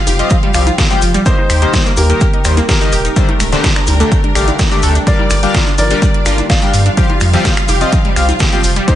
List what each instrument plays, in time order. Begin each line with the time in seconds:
Already playing: analog synth pad C3 F3 G3 F4 G4, grand piano D5 F5, violin section F5
0.07 analog synth bass F1, synth pluck G4, open hi-hat, high conga, maracas
0.19 analog polysynth F3 C4 F4 G4 D#5, synth pluck F4, closed hi-hat, maracas
0.30 synth pluck F3, kick, closed hi-hat, maracas
0.43 synth pluck G3, closed hi-hat, low conga
0.54 analog synth bass C2, analog polysynth F3 C4 F4 G4 F5, synth pluck G3, finger snap, open hi-hat, maracas
0.67 synth pluck F4, closed hi-hat, high conga, maracas
0.78 synth pluck G4, kick, snare, closed hi-hat, maracas
0.91 analog polysynth F3 C4 F4 G4 G5, synth pluck F4, closed hi-hat, low conga, maracas
1.02 analog synth bass F1, synth pluck F3, open hi-hat, maracas
1.14 synth pluck G3, closed hi-hat, maracas
1.26 analog polysynth D#3 A#3 D#4 G4 C5, synth pluck A#3, analog synth pad A#3 D#4, grand piano D#4 C5, violin section C5, kick, closed hi-hat, maracas
1.38 synth pluck D#4, high conga
1.50 analog synth bass D#2, synth pluck G4, finger snap, open hi-hat, maracas
1.61 analog polysynth D#3 A#3 D#4 G4 C5, synth pluck D#4, closed hi-hat, maracas
1.73 synth pluck G3, kick, snare, closed hi-hat, maracas
1.86 synth pluck A#3, maracas
1.97 analog synth bass D#2, synth pluck A#3, grand piano G4 A#4, violin section A#4, open hi-hat, high conga, maracas
2.10 analog polysynth D#3 A#3 D#4 G4 A#4, synth pluck D#4, closed hi-hat, maracas
2.21 synth pluck G4, kick, closed hi-hat, maracas
2.33 synth pluck D#4, closed hi-hat
2.44 analog synth bass D#2, analog polysynth D#3 A#3 D#4 G4 C5, synth pluck G3, finger snap, open hi-hat, maracas
2.57 synth pluck A#3, closed hi-hat, high conga, maracas
2.69 synth pluck A#3, grand piano G4 A#4, violin section A#4, kick, snare, closed hi-hat, maracas
2.81 analog polysynth D#3 A#3 D#4 G4 D#5, synth pluck D#4, closed hi-hat, maracas
2.92 analog synth bass D#1, synth pluck G4, open hi-hat, maracas
3.05 synth pluck D#4, closed hi-hat, maracas
3.16 analog polysynth D3 A3 D4 G4 C5, synth pluck G3, analog synth pad G3 D4, kick, closed hi-hat, maracas
3.29 synth pluck A3, closed hi-hat, high conga
3.40 analog synth bass D1, synth pluck A3, finger snap, open hi-hat, low conga, maracas
3.52 analog polysynth D3 A3 D4 G4 C5, synth pluck D4, snare, closed hi-hat, maracas
3.64 synth pluck G4, kick, snare, closed hi-hat, maracas
3.76 synth pluck D4, finger snap, maracas
3.87 analog synth bass D2, synth pluck G3, open hi-hat, high conga, maracas
4.00 analog polysynth D3 A3 D4 G4 A4, synth pluck A3, closed hi-hat, maracas
4.12 synth pluck A3, kick, closed hi-hat, maracas
4.24 synth pluck D4, closed hi-hat, low conga
4.35 analog synth bass A1, analog polysynth D3 A3 D4 G4 F5, synth pluck G4, finger snap, open hi-hat, maracas
4.48 synth pluck D4, closed hi-hat, high conga, maracas
4.59 synth pluck G3, kick, snare, closed hi-hat, maracas
4.71 analog polysynth D3 A3 D4 G4 D5, synth pluck A3, closed hi-hat, low conga, maracas
4.82 analog synth bass D2, synth pluck A3, analog polysynth A3 D4 G4 A4, open hi-hat, maracas
4.95 synth pluck D4, closed hi-hat, maracas
5.07 analog synth pad D3 A#3 F4 G4, synth pluck F3, analog polysynth G3 D4 G4 A#4 F5, grand piano A#4 D5, violin section D5, kick, closed hi-hat, maracas
5.19 synth pluck G3, high conga
5.30 analog synth bass G1, synth pluck G3, finger snap, open hi-hat, maracas
5.43 analog polysynth G3 D4 G4 A#4 F5, synth pluck D4, closed hi-hat, maracas
5.54 synth pluck F4, kick, snare, closed hi-hat, maracas
5.67 synth pluck D4, maracas
5.78 analog synth bass G1, synth pluck F3, grand piano A#4 D5, violin section D5, open hi-hat, high conga, maracas
5.90 synth pluck G3, analog polysynth G3 D4 G4 A#4 D5, closed hi-hat, maracas
6.02 synth pluck G3, kick, closed hi-hat, maracas
6.14 synth pluck D4, closed hi-hat
6.26 analog synth bass G1, analog polysynth G3 D4 G4 A#4 F5, synth pluck F4, finger snap, open hi-hat, maracas
6.38 synth pluck D4, closed hi-hat, high conga, maracas
6.50 synth pluck F3, grand piano D5 F5, violin section F5, kick, snare, closed hi-hat, maracas
6.62 synth pluck G3, analog polysynth G3 D4 G4 A#4 G5, closed hi-hat, maracas
6.73 analog synth bass G2, synth pluck G3, open hi-hat, maracas
6.86 synth pluck D4, closed hi-hat, maracas
6.97 analog synth pad C3 F3, analog polysynth F3 C4 F4 G4 F5, synth pluck G4, kick, closed hi-hat, maracas
7.10 synth pluck F4, closed hi-hat, high conga
7.20 analog synth bass F2, synth pluck F3, finger snap, open hi-hat, low conga, maracas
7.33 analog polysynth F3 C4 F4 G4 F5, synth pluck G3, snare, closed hi-hat, maracas
7.45 synth pluck G3, kick, snare, closed hi-hat, maracas
7.57 synth pluck F4, finger snap, maracas
7.68 analog synth bass F1, synth pluck G4, open hi-hat, high conga, maracas
7.81 analog polysynth F3 C4 F4 G4 D#5, synth pluck F4, closed hi-hat, maracas
7.93 synth pluck F3, kick, closed hi-hat, maracas
8.05 synth pluck G3, closed hi-hat, low conga
8.16 analog synth bass C2, analog polysynth F3 C4 F4 G4 F5, synth pluck G3, finger snap, open hi-hat, maracas
8.29 synth pluck F4, closed hi-hat, high conga, maracas
8.39 synth pluck G4, kick, snare, closed hi-hat, maracas
8.52 analog polysynth F3 C4 F4 G4 G5, synth pluck F4, closed hi-hat, low conga, maracas
8.64 analog synth bass F1, synth pluck F3, open hi-hat, maracas
8.76 synth pluck G3, closed hi-hat, maracas
8.88 analog synth pad C3 A#3 D#4, analog polysynth D#3 A#3 D#4 G4 C5, synth pluck A#3, grand piano D#4 C5, violin section C5, kick, closed hi-hat, maracas